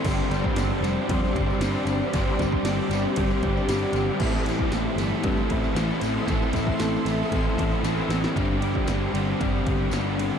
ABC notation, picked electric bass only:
X:1
M:4/4
L:1/8
Q:1/4=115
K:Gmix
V:1 name="Picked electric bass" clef=bass
G,,, G,,, G,,, F,,, F,, G,,, G,,, G,,, | G,,, G,,, G,,, G,,, G,,, G,,, G,,, G,,, | A,,, A,,, A,,, G,,, G,, A,,, A,,, A,,, | A,,, A,,, A,,, A,,, A,,, A,,, A,,, A,,, |
G,,,2 G,,, G,,, G,,, G,,, G,,,2 |]